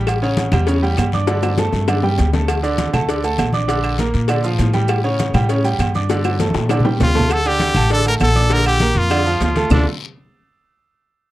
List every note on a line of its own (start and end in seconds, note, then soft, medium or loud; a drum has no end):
0.00 0.47 A1 loud
0.00 0.17 G3 medium
0.00 0.17 G4 medium
0.00 0.17 G5 medium
0.07 cowbell loud
0.07 high conga soft
0.07 low agogo loud
0.07 long guiro medium
0.07 claves medium
0.07 maracas medium
0.22 0.47 C#3 medium
0.22 0.47 C#4 medium
0.22 0.47 C#5 medium
0.22 high conga soft
0.22 low agogo medium
0.37 cowbell medium
0.37 high conga loud
0.37 low timbale medium
0.37 low agogo medium
0.37 short guiro medium
0.37 maracas medium
0.52 0.94 E2 loud
0.52 0.65 G3 medium
0.52 0.65 G4 medium
0.52 0.65 G5 medium
0.52 high conga medium
0.52 low conga medium
0.52 low agogo loud
0.52 short guiro medium
0.52 claves medium
0.52 maracas soft
0.67 0.80 C#3 medium
0.67 0.80 C#4 medium
0.67 0.80 C#5 medium
0.67 cowbell loud
0.67 high conga soft
0.67 long guiro medium
0.67 maracas medium
0.82 1.07 G3 medium
0.82 1.07 G4 medium
0.82 1.08 G5 medium
0.82 high conga soft
0.82 low agogo medium
0.97 1.68 G2 medium
0.97 cowbell medium
0.97 high conga medium
0.97 low timbale medium
0.97 low agogo loud
0.97 short guiro medium
0.97 claves medium
0.97 maracas medium
1.12 1.25 D4 medium
1.12 1.26 D5 medium
1.12 1.26 D6 medium
1.12 high conga medium
1.12 short guiro medium
1.12 maracas soft
1.27 1.52 D3 medium
1.27 1.52 D4 medium
1.27 1.53 D5 medium
1.27 cowbell loud
1.27 high bongo medium
1.27 high conga soft
1.27 low agogo medium
1.27 long guiro medium
1.27 maracas medium
1.43 high bongo loud
1.43 low agogo loud
1.43 claves medium
1.43 maracas medium
1.58 1.83 A3 medium
1.58 1.83 A4 medium
1.58 1.83 A5 medium
1.58 cowbell medium
1.58 high bongo medium
1.58 high conga loud
1.58 low timbale medium
1.58 short guiro medium
1.58 maracas medium
1.72 2.15 G2 medium
1.72 low bongo medium
1.72 high conga soft
1.72 short guiro medium
1.72 maracas soft
1.88 2.01 D3 medium
1.88 2.01 D4 medium
1.88 2.01 D5 medium
1.88 cowbell loud
1.88 low bongo medium
1.88 high conga soft
1.88 low agogo loud
1.88 long guiro medium
1.88 claves medium
1.88 maracas medium
2.03 2.28 G3 medium
2.03 2.28 G4 medium
2.03 2.28 G5 medium
2.03 low bongo loud
2.03 high conga soft
2.18 2.89 D2 medium
2.18 cowbell medium
2.18 high conga medium
2.18 low timbale medium
2.18 low agogo medium
2.18 short guiro medium
2.18 maracas medium
2.33 2.58 A3 medium
2.33 2.58 A4 medium
2.33 2.59 A5 medium
2.33 cowbell medium
2.33 low bongo medium
2.33 high conga medium
2.33 short guiro medium
2.33 maracas soft
2.48 cowbell loud
2.48 high conga soft
2.48 low agogo loud
2.48 long guiro medium
2.48 claves medium
2.48 maracas medium
2.63 2.88 D3 medium
2.63 2.88 D4 medium
2.63 2.88 D5 medium
2.63 low agogo medium
2.63 maracas medium
2.78 cowbell medium
2.78 high conga loud
2.78 low timbale medium
2.78 low agogo medium
2.78 short guiro medium
2.78 maracas medium
2.93 3.36 D2 medium
2.93 3.06 A3 medium
2.93 3.06 A4 medium
2.93 3.06 A5 medium
2.93 high conga medium
2.93 low conga medium
2.93 low agogo loud
2.93 short guiro medium
2.93 claves medium
2.93 maracas soft
3.08 3.21 D3 medium
3.08 3.21 D4 medium
3.08 3.21 D5 medium
3.08 cowbell loud
3.08 high conga soft
3.08 long guiro medium
3.08 maracas medium
3.23 3.48 A3 medium
3.23 3.49 A4 medium
3.23 3.49 A5 medium
3.23 high conga soft
3.23 low agogo medium
3.23 maracas medium
3.38 4.09 A#1 medium
3.38 cowbell medium
3.38 high conga medium
3.38 low timbale medium
3.38 low agogo loud
3.38 short guiro medium
3.38 claves medium
3.38 maracas medium
3.53 3.66 D4 medium
3.53 3.66 D5 medium
3.53 3.66 D6 medium
3.53 high conga medium
3.53 short guiro medium
3.53 maracas soft
3.68 3.93 D3 medium
3.68 3.93 D4 medium
3.68 3.93 D5 medium
3.68 cowbell loud
3.68 high conga soft
3.68 low agogo medium
3.68 long guiro medium
3.68 maracas medium
3.84 high conga soft
3.84 low agogo loud
3.84 claves medium
3.98 4.24 A#3 medium
3.98 4.24 A#4 medium
3.98 4.24 A#5 medium
3.98 cowbell medium
3.98 high conga loud
3.98 low timbale medium
3.98 short guiro medium
3.98 maracas medium
4.14 4.56 A#2 medium
4.14 high conga soft
4.14 short guiro medium
4.14 maracas soft
4.28 4.41 D3 medium
4.28 4.42 D4 medium
4.28 4.42 D5 medium
4.28 cowbell loud
4.28 high conga soft
4.28 low agogo loud
4.28 long guiro medium
4.28 claves medium
4.28 maracas medium
4.44 4.69 F3 medium
4.44 4.69 F4 medium
4.44 4.69 F5 medium
4.44 high conga soft
4.44 maracas medium
4.58 5.29 A2 loud
4.58 cowbell medium
4.58 high conga medium
4.58 low timbale medium
4.58 low agogo medium
4.58 short guiro medium
4.58 maracas medium
4.73 4.99 G3 medium
4.73 4.99 G4 medium
4.73 4.99 G5 medium
4.73 cowbell medium
4.73 high conga medium
4.73 short guiro medium
4.73 maracas soft
4.88 cowbell loud
4.88 low agogo loud
4.88 long guiro medium
4.88 claves medium
4.88 maracas medium
5.04 5.29 C#3 medium
5.04 5.29 C#4 medium
5.04 5.29 C#5 medium
5.04 high conga soft
5.04 low agogo medium
5.19 cowbell medium
5.19 high conga medium
5.19 low timbale medium
5.19 low agogo medium
5.19 short guiro medium
5.19 maracas medium
5.34 5.76 A2 medium
5.34 5.47 G3 medium
5.34 5.47 G4 medium
5.34 5.47 G5 medium
5.34 high conga medium
5.34 low conga medium
5.34 low agogo loud
5.34 short guiro medium
5.34 claves medium
5.34 maracas soft
5.49 5.61 C#3 medium
5.49 5.62 C#4 medium
5.49 5.62 C#5 medium
5.49 cowbell loud
5.49 high conga soft
5.49 long guiro medium
5.49 maracas medium
5.64 5.89 G3 medium
5.64 5.89 G4 medium
5.64 5.89 G5 medium
5.64 low agogo medium
5.64 maracas medium
5.79 6.49 G2 medium
5.79 cowbell medium
5.79 high conga medium
5.79 low timbale medium
5.79 low agogo loud
5.79 short guiro medium
5.79 claves medium
5.79 maracas medium
5.94 6.07 D4 medium
5.94 6.07 D5 medium
5.94 6.07 D6 medium
5.94 high conga medium
5.94 short guiro medium
5.94 maracas soft
6.09 6.35 D3 medium
6.09 6.35 D4 medium
6.09 6.35 D5 medium
6.09 cowbell loud
6.09 high bongo medium
6.09 high conga soft
6.09 low agogo medium
6.09 long guiro medium
6.09 maracas medium
6.24 high bongo medium
6.24 high conga soft
6.24 low agogo loud
6.24 claves medium
6.24 maracas medium
6.40 6.65 A3 medium
6.40 6.65 A4 medium
6.40 6.65 A5 medium
6.40 cowbell medium
6.40 high bongo medium
6.40 high conga medium
6.40 low timbale medium
6.40 short guiro medium
6.40 maracas medium
6.50 high conga loud
6.54 6.97 A#2 medium
6.54 high bongo medium
6.54 short guiro medium
6.54 maracas soft
6.69 6.82 D3 medium
6.69 6.82 D4 medium
6.69 6.83 D5 medium
6.69 cowbell loud
6.69 low bongo medium
6.69 high timbale medium
6.69 low agogo loud
6.69 long guiro medium
6.69 claves medium
6.69 maracas medium
6.80 7.09 G3 medium
6.80 low conga medium
6.84 7.09 G4 medium
6.84 7.10 G5 medium
6.84 low bongo loud
6.84 high timbale medium
7.00 7.70 D2 medium
7.00 7.34 F4 medium
7.00 cowbell medium
7.00 low bongo loud
7.00 low conga loud
7.00 low timbale loud
7.00 low agogo medium
7.00 short guiro medium
7.00 maracas medium
7.15 7.27 A3 medium
7.15 7.28 A4 medium
7.15 7.28 A5 medium
7.15 cowbell medium
7.15 low bongo loud
7.15 low timbale loud
7.15 short guiro medium
7.15 maracas soft
7.20 low conga medium
7.30 7.49 A4 loud
7.30 cowbell loud
7.30 high conga soft
7.30 low agogo loud
7.30 long guiro medium
7.30 claves medium
7.30 maracas medium
7.45 7.70 D3 medium
7.45 7.70 D4 medium
7.45 7.92 G4 loud
7.45 7.70 D5 medium
7.45 high conga soft
7.45 low agogo medium
7.45 maracas medium
7.60 cowbell medium
7.60 high conga medium
7.60 low timbale medium
7.60 low agogo medium
7.60 short guiro medium
7.60 maracas medium
7.75 8.18 A1 medium
7.75 7.88 A3 medium
7.75 7.88 A4 medium
7.75 7.88 A5 medium
7.75 high conga medium
7.75 low conga medium
7.75 low agogo loud
7.75 short guiro medium
7.75 claves medium
7.75 maracas soft
7.90 8.03 D3 medium
7.90 8.03 D4 medium
7.90 8.06 A4 loud
7.90 8.03 D5 medium
7.90 cowbell loud
7.90 long guiro medium
7.90 maracas medium
8.05 8.30 A3 medium
8.05 8.30 A4 medium
8.05 8.14 A#4 loud
8.05 8.31 A5 medium
8.05 high conga soft
8.05 low agogo medium
8.05 maracas medium
8.20 8.90 A#1 loud
8.20 8.55 A4 loud
8.20 cowbell medium
8.20 high conga medium
8.20 low timbale medium
8.20 low agogo loud
8.20 short guiro medium
8.20 claves medium
8.20 maracas medium
8.35 8.48 D4 medium
8.35 8.48 D5 medium
8.35 8.48 D6 medium
8.35 high conga medium
8.35 short guiro medium
8.35 maracas soft
8.50 8.75 D3 medium
8.50 8.75 D4 medium
8.50 8.67 A#4 loud
8.50 8.75 D5 medium
8.50 cowbell loud
8.50 high conga soft
8.50 low agogo medium
8.50 long guiro medium
8.50 maracas medium
8.65 8.99 G4 loud
8.65 high conga soft
8.65 low agogo loud
8.65 claves medium
8.65 maracas medium
8.79 9.06 A#3 medium
8.79 9.06 A#4 medium
8.79 9.06 A#5 medium
8.79 cowbell medium
8.79 high conga loud
8.79 low timbale medium
8.79 short guiro medium
8.79 maracas medium
8.95 9.38 F2 medium
8.95 9.42 F4 loud
8.95 high conga soft
8.95 short guiro medium
8.95 maracas soft
9.10 9.23 D3 medium
9.10 9.23 D4 medium
9.10 9.23 D5 medium
9.10 cowbell loud
9.10 high conga soft
9.10 low agogo loud
9.10 long guiro medium
9.10 claves medium
9.10 maracas medium
9.26 9.51 F3 medium
9.26 9.51 F4 medium
9.26 9.51 F5 medium
9.26 high conga soft
9.26 maracas medium
9.40 9.67 D2 medium
9.40 9.70 F4 medium
9.40 cowbell medium
9.40 high conga medium
9.40 low timbale medium
9.40 low agogo medium
9.40 short guiro medium
9.40 maracas medium
9.56 9.69 A3 medium
9.56 9.69 A4 medium
9.56 9.69 A5 medium
9.56 cowbell medium
9.56 high conga medium
9.56 short guiro medium
9.56 maracas soft
9.70 9.85 D2 loud
9.70 9.85 D3 medium
9.70 9.85 A3 medium
9.70 9.86 D4 medium
9.70 9.86 F4 medium
9.70 9.86 A4 medium
9.70 9.86 D5 loud
9.70 low bongo loud
9.70 low conga loud
9.70 low timbale loud
9.70 long guiro loud
9.70 claves loud
9.70 maracas loud